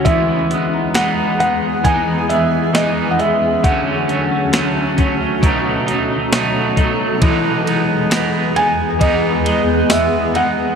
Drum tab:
RD |--------|--------|xxxxxxxx|
HH |xxxxxxxx|xxxxxxxx|--------|
TB |--------|--------|--x---x-|
SD |--o---o-|--o---o-|--o---o-|
BD |o---o---|o--oo--o|o---o---|